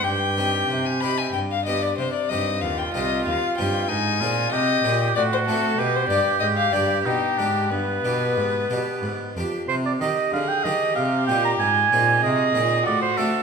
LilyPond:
<<
  \new Staff \with { instrumentName = "Violin" } { \time 3/4 \key c \minor \tempo 4 = 94 g''4~ g''16 aes''16 b''16 aes''16 g''16 f''16 ees''16 d''16 | c''16 d''16 ees''8 f''16 g''16 ees''8 f''8 g''8 | aes''4 ees''4 d''16 c''16 a'8 | b'16 c''16 d''8 ees''16 f''16 d''8 g'4 |
b'2~ b'8 r8 | r4 aes'4 g'4~ | g'4 aes'4 fis'4 | }
  \new Staff \with { instrumentName = "Oboe" } { \time 3/4 \key c \minor g'2~ g'8 r8 | r4 f'2 | ees'8 f'8 g'4 fis'4 | g'2 ees'8 d'8 |
b2~ b8 r8 | c''16 d''16 ees''8 f''16 g''16 ees''8 f''8 g''16 bes''16 | aes''4 ees''4 d''16 c''16 a'8 | }
  \new Staff \with { instrumentName = "Harpsichord" } { \time 3/4 \key c \minor r8 <c' ees' g'>4 <c' ees' g'>8 r8 <b d' g'>8 | r8 <c' ees' g'>4 <c' ees' g'>4 <c' ees' g'>8 | r8 <c' ees' aes'>4 <c' ees' aes'>8 r8 <c' d' fis'>8 | r8 <d' g'>4 <d' g'>4 <d' g'>8 |
r8 <d' g'>4 <d' g'>4 <d' g'>8 | r8 <ees' g'>4 <ees' g'>4 <ees' g'>8 | r8 <c' ees' aes'>4 <c' ees' aes'>8 r8 <c' d' fis'>8 | }
  \new Staff \with { instrumentName = "Harpsichord" } { \clef bass \time 3/4 \key c \minor g,4 c4 g,4 | c8 g,8 ees,8 c,8 ees,8 g,8 | aes,8 bes,8 c8 bes,8 a,8 a8 | b,8 g,8 aes,8 g,8 b,8 aes,8 |
g,8 b,8 aes,8 b,8 aes,8 f,8 | c8 ees8 d8 ees8 c8 bes,8 | aes,8 bes,8 c8 bes,8 a,8 a8 | }
  \new Staff \with { instrumentName = "Cello" } { \clef bass \time 3/4 \key c \minor g,4 c4 g,4 | c8 g,8 ees,8 c,8 ees,8 g,8 | aes,8 bes,8 c8 bes,8 a,8 a8 | b,8 g,8 aes,8 g,8 b,8 aes,8 |
g,8 b,8 aes,8 b,8 aes,8 f,8 | c8 ees8 d8 ees8 c8 bes,8 | aes,8 bes,8 c8 bes,8 a,8 a8 | }
>>